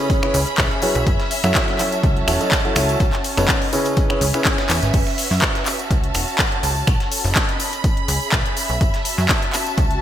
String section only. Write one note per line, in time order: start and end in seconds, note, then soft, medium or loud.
0.00 10.02 C#4 medium
0.00 1.84 B5 medium
0.36 1.07 G#4 medium
0.45 3.00 E5 medium
1.41 3.40 F#4 medium
1.75 3.97 A5 medium
3.44 5.72 B4 medium
3.44 3.97 D#5 medium
4.32 6.87 E5 medium
4.41 4.94 G#5 medium
5.11 7.27 F#4 medium
5.82 7.27 A5 medium
7.01 7.84 A4 medium
7.31 7.84 D#5 medium
7.31 9.59 B5 loud
8.01 8.81 G#4 medium
8.28 10.02 E5 medium
8.98 10.02 A5 medium
9.06 10.02 F#4 medium